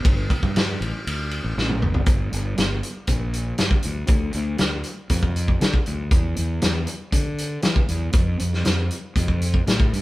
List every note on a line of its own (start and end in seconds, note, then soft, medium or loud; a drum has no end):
0.05 0.27 G1 loud
0.05 kick loud
0.05 ride medium
0.30 kick medium
0.30 ride medium
0.43 0.76 G2 medium
0.43 kick medium
0.56 snare loud
0.56 ride medium
0.81 0.92 A1 medium
0.81 ride medium
1.07 1.39 D2 medium
1.07 ride medium
1.31 ride medium
1.44 1.55 A1 medium
1.57 1.80 A1 medium
1.57 snare medium
1.70 high tom medium
1.82 2.05 G1 medium
1.82 mid tom medium
1.94 floor tom medium
2.06 2.29 G1 medium
2.06 kick loud
2.06 closed hi-hat medium
2.33 2.55 G1 medium
2.33 closed hi-hat medium
2.58 2.80 G1 medium
2.58 snare loud
2.58 closed hi-hat medium
2.83 closed hi-hat medium
3.07 3.52 A#1 medium
3.07 kick medium
3.07 closed hi-hat medium
3.33 closed hi-hat medium
3.58 3.71 G2 medium
3.58 snare loud
3.58 closed hi-hat medium
3.71 kick medium
3.82 4.07 D2 medium
3.82 closed hi-hat medium
4.07 4.31 D2 loud
4.07 kick loud
4.07 closed hi-hat medium
4.33 4.57 D2 medium
4.33 closed hi-hat medium
4.58 4.82 D2 medium
4.58 snare loud
4.58 closed hi-hat medium
4.83 closed hi-hat medium
5.09 5.54 F2 medium
5.09 kick medium
5.09 closed hi-hat medium
5.23 kick medium
5.36 closed hi-hat medium
5.48 kick medium
5.61 5.72 D3 medium
5.61 snare loud
5.61 closed hi-hat medium
5.74 kick medium
5.86 6.09 D2 medium
5.86 closed hi-hat medium
6.11 6.34 E2 medium
6.11 kick loud
6.11 closed hi-hat medium
6.36 6.60 E2 medium
6.36 closed hi-hat medium
6.62 6.85 E2 medium
6.62 snare loud
6.62 closed hi-hat medium
6.87 closed hi-hat medium
7.12 7.57 D3 medium
7.12 kick medium
7.12 closed hi-hat medium
7.38 closed hi-hat medium
7.62 7.76 E3 medium
7.62 snare loud
7.62 closed hi-hat medium
7.76 kick medium
7.88 8.11 E2 medium
7.88 closed hi-hat medium
8.13 8.36 F2 loud
8.13 kick loud
8.13 closed hi-hat medium
8.39 8.62 F2 medium
8.39 closed hi-hat medium
8.53 snare soft
8.65 8.88 F2 medium
8.65 snare loud
8.65 closed hi-hat medium
8.90 closed hi-hat medium
9.16 9.60 F2 medium
9.16 kick medium
9.16 closed hi-hat medium
9.28 kick medium
9.42 closed hi-hat medium
9.54 kick medium
9.67 9.90 A2 medium
9.67 snare loud
9.67 closed hi-hat medium
9.80 kick medium
9.93 10.02 G2 medium
9.93 closed hi-hat medium